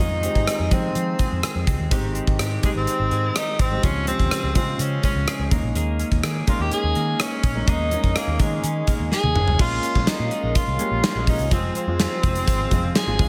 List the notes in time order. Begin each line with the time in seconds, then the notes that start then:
Already playing: D#4
0.00 F2 D#3 G#3 C4 D#4 F4 G#4
0.23 G#3 C4 D#4 G4, closed hi-hat
0.35 G#2, kick
0.47 G#4, cross-stick, closed hi-hat
0.59 F2
0.71 F3 G#3 C4 D#4 G5, kick, closed hi-hat
0.95 F3 C4, closed hi-hat
1.19 G#3, kick, closed hi-hat
1.32 F2
1.43 G#4, cross-stick, closed hi-hat
1.55 F2
1.67 C#2 C4, kick, closed hi-hat
1.79 D#2
1.91 G#1 D#3 G#3 C4 D#4 G4, kick, closed hi-hat
2.15 C4, closed hi-hat
2.27 G#1, kick
2.39 G#2 G4, cross-stick, closed hi-hat
2.63 G#3 C4 D#4 G4, kick, closed hi-hat
2.76 G#1 C4
2.87 C4, closed hi-hat
2.99 G#1
3.11 G#2 G#3, closed hi-hat
3.36 D#4 G4, cross-stick, closed hi-hat
3.59 G#1 C4, kick, closed hi-hat
3.71 G#3 C4 D#4 G4
3.83 C#2 F3 G#3 C4 C#4 F4 G#4, kick, closed hi-hat
4.07 C#3 G#3 C4 G4, closed hi-hat
4.19 D#2, kick
4.31 G#4, cross-stick, closed hi-hat
4.43 C#2
4.55 C#3 G#3 C4 F4, kick, closed hi-hat
4.79 C#3 C4 C#4, closed hi-hat
5.03 G#3 C#4, kick, closed hi-hat
5.15 C#2
5.27 G#4, cross-stick, closed hi-hat
5.39 C#2
5.51 G#3 A#3 C#4 D#4, kick, closed hi-hat
5.63 A#1
5.75 D#2 A#3 G#4, closed hi-hat
6.00 C#4, closed hi-hat
6.12 D#2, kick
6.23 D#3 G#4, cross-stick, closed hi-hat
6.47 G#3 A#3 C#4 D#4 F4, kick, closed hi-hat
6.59 D#2 G4
6.72 C#4 G#4, closed hi-hat
6.83 D#2
6.95 D#3 A#3, closed hi-hat
7.20 C#4 G#4, cross-stick, closed hi-hat
7.43 A#1 C#4, kick, closed hi-hat
7.55 G#3 A#3 C#4 D#4
7.67 D#2 G#3 A#3 C#4 D#4 G#4, kick, closed hi-hat
7.91 G#3 A#3 C#4 D#4, closed hi-hat
8.04 F2, kick
8.16 A#3 G#4, cross-stick, closed hi-hat
8.27 D#2
8.39 D#3 G#3 A#3 C#4 D#4, kick, closed hi-hat
8.63 D#3 C#4, closed hi-hat
8.87 A#3, kick, closed hi-hat
9.00 D#2
9.11 G#4, snare
9.23 D#2, high tom
9.35 G1 C#4, mid tom
9.47 F1, floor tom
9.59 A#1 G#3 A#3 C#4 F4 G#4 A#4 F5, kick, crash
9.83 C#4, closed hi-hat
9.95 A#1 G#3 A#3 C#4 F4, kick
10.07 D#4 F4, muted picked electric bass stroke, snare, closed hi-hat
10.19 A#2
10.31 G#3, closed hi-hat
10.43 A#1
10.55 F4, kick, closed hi-hat
10.67 C2
10.79 G#3 A#3 C#4 G4, closed hi-hat
10.91 A#1
11.03 G#3, snare, closed hi-hat
11.15 A#1 G#3 A#3 C#4 F4
11.27 A#1 C#4 D#4, kick, open hi-hat
11.39 C2, closed hi-hat
11.51 F1 F3 G#3 C4 F4 C5 G#5, kick, closed hi-hat
11.75 C4, closed hi-hat
11.87 F2 F3 G#3 C4 F4
11.99 F4, snare, closed hi-hat
12.23 F1 G#3, kick, closed hi-hat
12.35 closed hi-hat
12.47 G#1 F4, kick, closed hi-hat
12.71 F1 F3 G#3 C4 F4, kick, closed hi-hat
12.95 G#3 G#4, snare, closed hi-hat
13.07 G#1 F3 G#3 C4 F4
13.18 C#2 F3 G#3 C#4 F4 C#5, kick, open hi-hat